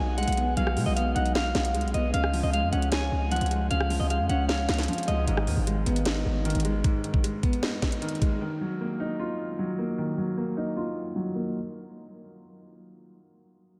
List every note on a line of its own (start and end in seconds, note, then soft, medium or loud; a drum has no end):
0.00 0.26 B1 loud
0.00 0.57 F#3 medium
0.00 0.16 G#3 medium
0.00 0.36 B3 medium
0.00 0.57 D#4 loud
0.00 0.77 F#4 medium
0.00 0.15 G#5 medium
0.18 0.75 G#3 medium
0.18 0.55 F#5 loud
0.18 closed hi-hat medium
0.23 closed hi-hat medium
0.28 0.56 B1 loud
0.28 closed hi-hat medium
0.32 closed hi-hat medium
0.37 0.95 B3 medium
0.37 closed hi-hat medium
0.57 0.78 B1 loud
0.57 1.55 F#3 medium
0.57 0.85 F5 loud
0.57 closed hi-hat medium
0.67 cross-stick medium
0.76 0.86 B2 loud
0.76 1.73 G#3 medium
0.76 open hi-hat medium
0.86 1.15 B1 loud
0.86 0.94 D#5 medium
0.96 1.93 B3 medium
0.96 1.12 F5 medium
0.96 closed hi-hat medium
1.15 1.53 B1 loud
1.15 2.14 D#4 loud
1.15 1.32 F#5 medium
1.15 closed hi-hat medium
1.26 closed hi-hat soft
1.35 2.14 F#4 medium
1.35 1.91 F5 loud
1.35 snare loud
1.55 1.76 B1 loud
1.55 snare loud
1.55 closed hi-hat medium
1.65 closed hi-hat medium
1.74 1.86 C#2 loud
1.74 2.14 G#3 medium
1.74 closed hi-hat medium
1.81 1.94 B1 loud
1.81 closed hi-hat medium
1.88 closed hi-hat soft
1.94 2.13 B1 loud
1.94 2.14 B3 medium
1.94 2.10 D#5 medium
1.94 closed hi-hat medium
2.14 2.42 C#2 loud
2.14 3.12 C#3 medium
2.14 2.41 F5 loud
2.14 closed hi-hat medium
2.24 cross-stick medium
2.33 3.30 F3 medium
2.33 open hi-hat medium
2.43 2.64 C#2 loud
2.43 2.51 D#5 medium
2.53 3.49 G#3 medium
2.53 2.70 F5 medium
2.53 closed hi-hat medium
2.63 2.72 F2 loud
2.72 3.10 C#2 loud
2.72 3.71 C#4 medium
2.72 2.89 F#5 medium
2.72 closed hi-hat medium
2.82 closed hi-hat medium
2.92 3.90 C#5 medium
2.92 3.29 G#5 medium
2.92 snare loud
2.92 closed hi-hat loud
3.12 3.40 C#2 loud
3.31 3.89 F3 medium
3.31 3.68 F#5 medium
3.31 closed hi-hat medium
3.36 closed hi-hat medium
3.41 3.69 C#2 loud
3.41 closed hi-hat medium
3.46 closed hi-hat medium
3.51 4.08 G#3 medium
3.51 closed hi-hat medium
3.71 3.99 C#2 loud
3.71 4.69 C#3 medium
3.71 3.98 F5 loud
3.71 closed hi-hat medium
3.81 cross-stick loud
3.90 4.87 F3 medium
3.90 open hi-hat medium
4.00 4.21 C#2 loud
4.00 4.08 D#5 medium
4.10 5.06 G#3 medium
4.10 4.26 F5 medium
4.10 closed hi-hat medium
4.20 4.29 F2 loud
4.29 4.67 C#2 loud
4.29 5.28 C#4 loud
4.29 4.46 F#5 medium
4.29 closed hi-hat medium
4.49 5.28 C#5 medium
4.49 5.04 F5 medium
4.49 snare loud
4.69 4.88 C#2 loud
4.69 snare medium
4.69 closed hi-hat medium
4.74 closed hi-hat medium
4.79 snare medium
4.79 closed hi-hat medium
4.83 closed hi-hat medium
4.88 5.28 F3 medium
4.88 closed hi-hat medium
4.93 closed hi-hat medium
4.98 closed hi-hat medium
5.03 closed hi-hat medium
5.08 5.27 C#2 loud
5.08 5.28 G#3 medium
5.08 5.24 D#5 medium
5.08 closed hi-hat medium
5.28 5.49 G#1 loud
5.28 6.26 G#2 medium
5.28 closed hi-hat medium
5.37 cross-stick medium
5.47 5.56 D#2 loud
5.47 6.44 D#3 medium
5.47 open hi-hat medium
5.57 5.85 G#1 loud
5.67 6.63 G#3 medium
5.67 closed hi-hat medium
5.86 6.24 G#1 loud
5.86 6.84 B3 medium
5.86 closed hi-hat medium
5.96 closed hi-hat medium
6.05 7.04 D#4 medium
6.05 snare loud
6.05 closed hi-hat loud
6.26 6.54 G#1 loud
6.45 7.02 D#3 medium
6.45 closed hi-hat medium
6.50 closed hi-hat medium
6.55 6.83 G#1 loud
6.55 closed hi-hat medium
6.60 closed hi-hat medium
6.65 7.22 G#3 medium
6.65 closed hi-hat medium
6.84 7.82 G#2 medium
6.84 kick loud
6.84 closed hi-hat medium
7.04 8.00 D#3 medium
7.04 closed hi-hat medium
7.14 kick loud
7.24 8.20 G#3 medium
7.24 closed hi-hat medium
7.43 8.41 B3 loud
7.43 kick medium
7.43 closed hi-hat medium
7.53 closed hi-hat soft
7.63 8.41 D#4 medium
7.63 snare loud
7.82 kick medium
7.82 snare medium
7.82 closed hi-hat soft
7.92 closed hi-hat medium
8.02 8.40 D#3 medium
8.02 closed hi-hat medium
8.09 closed hi-hat medium
8.15 closed hi-hat soft
8.21 8.41 G#3 medium
8.21 kick medium
8.21 closed hi-hat medium
8.41 9.39 D#3 medium
8.61 9.57 F#3 medium
8.81 9.77 A#3 medium
9.00 9.98 D#4 medium
9.20 10.18 F4 medium
9.59 10.16 F#3 medium
9.79 10.36 A#3 medium
9.98 10.96 D#3 medium
10.18 11.14 F#3 medium
10.37 11.34 A#3 medium
10.57 11.55 D#4 loud
10.77 11.55 F4 medium
11.16 11.55 F#3 medium
11.35 11.55 A#3 medium